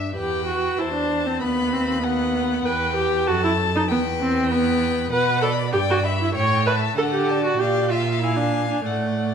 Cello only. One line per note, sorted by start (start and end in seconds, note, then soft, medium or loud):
0.17 0.76 E2 soft
0.79 1.43 E2 soft
1.41 2.65 D#2 soft
2.66 3.30 E2 soft
3.28 3.90 F#2 medium
3.89 5.11 E2 medium
5.11 5.75 B2 medium
5.74 6.36 G2 medium
6.37 6.97 A2 medium
6.98 7.59 D3 medium
7.60 8.82 A#2 soft
8.86 9.34 A2 soft